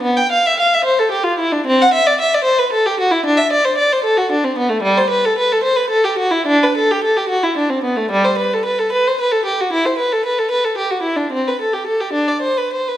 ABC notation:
X:1
M:12/8
L:1/16
Q:3/8=74
K:G
V:1 name="Violin"
B, g =f e f e c A G =F E D C ^f e d e d c B A G ^F E | D e d c d c A F D C B, A, G, c B A B A c B A G F E | D B A G A G F E D C B, A, G, c B A B A B c B A G F | E c B A B A B A G F E D C B A G A G D d c B c B |]